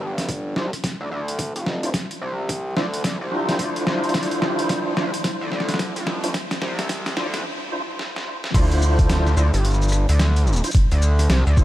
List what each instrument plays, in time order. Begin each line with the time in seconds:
0.01 analog synth bass G1
0.18 snare, closed hi-hat
0.29 kick, closed hi-hat
0.56 analog synth bass C2, tonewheel organ D4 E4 F4 C5, snare
0.73 cross-stick, closed hi-hat
0.84 kick, snare, closed hi-hat
1.01 analog synth bass D2
1.11 analog synth bass D2
1.28 closed hi-hat
1.39 kick, closed hi-hat
1.56 analog synth bass F1, closed hi-hat
1.66 snare
1.83 tonewheel organ D4 E4 F4 C5, closed hi-hat
1.94 kick, snare, closed hi-hat
2.11 closed hi-hat
2.22 analog synth bass C2
2.49 kick, closed hi-hat
2.76 analog synth bass D2, tonewheel organ D4 E4 F4 C5, snare
2.94 closed hi-hat
3.04 analog synth bass D2, kick, snare, closed hi-hat
3.21 analog synth bass C2
3.31 tonewheel organ D4 E4 F4 C5
3.49 snare, closed hi-hat
3.59 analog synth bass D2, kick, closed hi-hat
3.76 closed hi-hat
3.87 analog synth bass C2, snare
4.04 closed hi-hat
4.09 closed hi-hat
4.14 analog synth bass D2, kick, snare, closed hi-hat
4.23 closed hi-hat
4.31 closed hi-hat
4.42 analog synth bass G1, snare
4.59 closed hi-hat
4.69 kick, snare, closed hi-hat
4.97 analog synth bass C2, tonewheel organ D4 E4 F4 C5, snare
5.14 closed hi-hat
5.24 kick, snare, closed hi-hat
5.41 analog synth bass D2
5.52 analog synth bass D2, snare
5.60 snare
5.69 snare, closed hi-hat
5.74 snare
5.79 kick, snare, closed hi-hat
5.96 analog synth bass F1, closed hi-hat
6.07 snare
6.24 tonewheel organ D4 E4 F4 C5, closed hi-hat
6.34 kick, snare, closed hi-hat
6.51 snare, closed hi-hat
6.62 analog synth bass C2, snare
6.79 snare, closed hi-hat
6.89 kick, snare, closed hi-hat
7.06 snare, closed hi-hat
7.17 analog synth bass D2, tonewheel organ D4 E4 F4 C5, snare
7.34 snare, closed hi-hat
7.72 tonewheel organ D4 E4 F4 C5
7.99 snare
8.16 snare
8.44 snare
8.54 analog synth bass D2, tonewheel organ D4 E4 F4 C5, kick, closed hi-hat, crash, shaker
8.72 closed hi-hat, shaker
8.79 shaker
8.82 shaker
8.99 kick, closed hi-hat, shaker
9.10 snare, closed hi-hat, shaker
9.27 cross-stick, shaker
9.29 cross-stick
9.32 cross-stick
9.35 analog synth bass D2, tonewheel organ D4 E4 F4 C5, cross-stick, shaker
9.54 analog synth bass G1, closed hi-hat, shaker
9.65 closed hi-hat, shaker
9.70 shaker
9.74 shaker
9.82 shaker
9.88 cross-stick, shaker
9.92 shaker
10.09 analog synth bass D2, closed hi-hat, shaker
10.19 snare, closed hi-hat, shaker
10.36 closed hi-hat, shaker
10.47 shaker
10.53 shaker
10.56 shaker
10.64 tonewheel organ D4 E4 F4 C5, closed hi-hat, shaker
10.71 closed hi-hat, shaker
10.75 kick, shaker
10.92 analog synth bass D2, closed hi-hat, shaker
11.02 shaker
11.19 cross-stick, closed hi-hat, shaker
11.30 analog synth bass C2, snare, closed hi-hat, shaker
11.47 analog synth bass D2, shaker
11.57 tonewheel organ D4 E4 F4 C5, kick, shaker